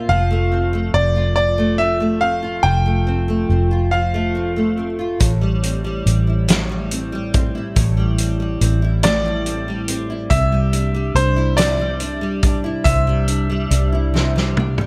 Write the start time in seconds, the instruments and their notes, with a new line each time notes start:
Already playing: nylon-string guitar A#2 A#3 C4 F4, grand piano E5
0.09 fingered electric bass F1, nylon-string guitar F3, grand piano F5
0.31 nylon-string guitar A3
0.52 nylon-string guitar C4
0.73 nylon-string guitar A3
0.94 fingered electric bass F1, nylon-string guitar C4, grand piano D5
1.16 nylon-string guitar F4
1.36 nylon-string guitar F3, grand piano D5
1.58 nylon-string guitar A3
1.78 nylon-string guitar C4, grand piano E5
2.00 nylon-string guitar A3
2.21 nylon-string guitar C4, grand piano F5
2.42 nylon-string guitar F4
2.63 fingered electric bass F1, nylon-string guitar F3, grand piano G5
2.86 nylon-string guitar A3
3.07 nylon-string guitar C4
3.28 nylon-string guitar A3
3.49 fingered electric bass F1, nylon-string guitar C4
3.71 nylon-string guitar F4
3.91 nylon-string guitar F3, grand piano F5
4.14 nylon-string guitar A3
4.35 nylon-string guitar C4
4.56 nylon-string guitar A3
4.77 nylon-string guitar C4
4.99 nylon-string guitar F4
5.20 fingered electric bass A1, nylon-string guitar A2, kick, closed hi-hat
5.41 nylon-string guitar G3
5.63 nylon-string guitar C4, closed hi-hat
5.84 nylon-string guitar G3
6.06 fingered electric bass A1, nylon-string guitar C4, closed hi-hat
6.27 nylon-string guitar E4
6.48 nylon-string guitar A2, snare, closed hi-hat
6.69 nylon-string guitar G3
6.91 nylon-string guitar C4, closed hi-hat
7.12 nylon-string guitar G3
7.34 nylon-string guitar C4, kick, closed hi-hat
7.55 nylon-string guitar E4
7.76 fingered electric bass A1, nylon-string guitar A2, kick, closed hi-hat
7.97 nylon-string guitar G3
8.18 nylon-string guitar C4, closed hi-hat
8.40 nylon-string guitar G3
8.61 fingered electric bass A1, nylon-string guitar C4, closed hi-hat
8.82 nylon-string guitar E4
9.03 nylon-string guitar A2, grand piano D5, snare, closed hi-hat
9.26 nylon-string guitar G3
9.46 nylon-string guitar C4, closed hi-hat
9.68 nylon-string guitar G3
9.88 nylon-string guitar C4, closed hi-hat
10.10 nylon-string guitar E4
10.30 fingered electric bass C2, nylon-string guitar C3, grand piano E5, kick, closed hi-hat
10.52 nylon-string guitar G3
10.73 nylon-string guitar D4, closed hi-hat
10.94 nylon-string guitar G3
11.15 fingered electric bass C2, nylon-string guitar D4, grand piano C5, closed hi-hat
11.36 nylon-string guitar E4
11.57 nylon-string guitar C3, grand piano D5, snare, closed hi-hat
11.80 nylon-string guitar G3
12.00 nylon-string guitar D4, closed hi-hat
12.21 nylon-string guitar G3
12.43 nylon-string guitar D4, kick, closed hi-hat
12.64 nylon-string guitar E4
12.84 fingered electric bass C2, nylon-string guitar C3, grand piano E5, kick, closed hi-hat
13.07 nylon-string guitar G3
13.28 nylon-string guitar D4, closed hi-hat
13.50 nylon-string guitar G3
13.71 fingered electric bass C2, nylon-string guitar D4, closed hi-hat
13.92 nylon-string guitar E4
14.14 nylon-string guitar C3, snare
14.36 nylon-string guitar G3, snare
14.57 nylon-string guitar D4, high tom
14.78 nylon-string guitar G3, mid tom